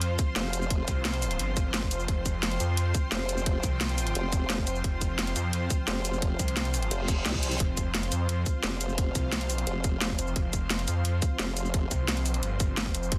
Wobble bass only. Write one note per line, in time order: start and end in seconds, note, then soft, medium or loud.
0.36 0.86 F1 loud
3.12 3.62 F1 loud
4.15 4.66 F1 loud
5.88 6.38 F1 loud
6.91 7.24 F1 loud
7.26 7.59 C2 loud
8.63 9.14 F1 loud
9.67 10.17 F1 medium
11.39 11.90 F1 medium